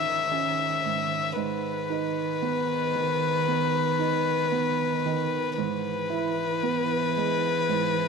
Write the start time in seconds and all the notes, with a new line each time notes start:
Already playing: G#2 D#3 C#4 E5
0.31 C#4
0.86 G#2
1.36 G#2 D#3 B4
1.90 D#4
2.42 B3
2.95 D#3
3.48 B3
3.99 D#4
4.52 B3
5.06 D#3
5.57 G#2 E3 B4
6.10 E4
6.63 B3
7.16 G#3
7.69 G#2